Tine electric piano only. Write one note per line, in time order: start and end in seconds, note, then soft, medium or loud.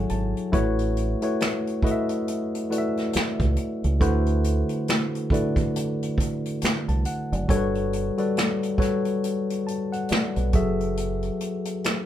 0.00 0.55 F#3 medium
0.00 0.47 E4 medium
0.00 0.53 F#4 medium
0.00 0.55 G#4 medium
0.00 0.55 A4 medium
0.00 0.54 C#5 medium
0.00 0.55 E5 medium
0.00 0.55 F#5 medium
0.00 0.55 G#5 medium
0.10 0.50 A5 medium
0.52 1.18 A3 loud
0.52 1.18 E4 medium
0.52 1.18 F#4 medium
0.52 1.18 B4 medium
0.52 1.19 C#5 loud
1.22 1.80 A3 medium
1.22 1.81 E4 medium
1.22 1.81 F#4 medium
1.22 1.81 B4 medium
1.22 1.81 C#5 medium
1.83 2.66 A3 medium
1.83 2.67 E4 medium
1.83 2.67 F#4 medium
1.83 2.67 B4 medium
1.83 1.92 D#5 medium
1.91 2.71 E5 medium
2.70 3.95 A3 medium
2.70 3.95 E4 medium
2.70 3.95 F#4 medium
2.70 3.95 B4 medium
2.70 2.79 D5 medium
2.78 3.99 E5 medium
4.00 5.25 D3 loud
4.00 5.25 A3 medium
4.00 5.25 E4 loud
4.00 5.26 F#4 medium
4.00 5.26 B4 medium
4.00 5.26 C5 loud
5.31 6.14 D3 medium
5.31 6.14 A3 medium
5.31 6.15 E4 medium
5.31 6.15 F#4 medium
5.31 6.15 B4 medium
5.31 6.15 D5 medium
6.89 7.05 A5 medium
7.06 7.30 F#5 medium
7.33 7.74 D5 medium
7.48 8.14 G3 medium
7.48 8.14 F#4 medium
7.48 8.14 A4 medium
7.48 7.57 A#4 medium
7.48 8.14 C#5 loud
7.57 8.18 B4 medium
8.18 8.76 G3 medium
8.18 8.76 F#4 medium
8.18 8.76 A4 medium
8.18 8.77 B4 medium
8.18 8.77 D5 medium
8.78 9.62 G3 medium
8.78 9.62 F#4 medium
8.78 9.62 A4 medium
8.78 9.62 B4 medium
8.78 9.63 C#5 medium
9.67 9.91 A5 medium
9.92 10.09 F#5 medium
10.10 10.34 D5 medium
10.36 10.77 B4 medium
10.53 12.06 F#3 medium
10.53 12.06 F#4 medium
10.53 12.06 G#4 medium
10.53 12.06 A4 medium
10.53 12.06 E5 medium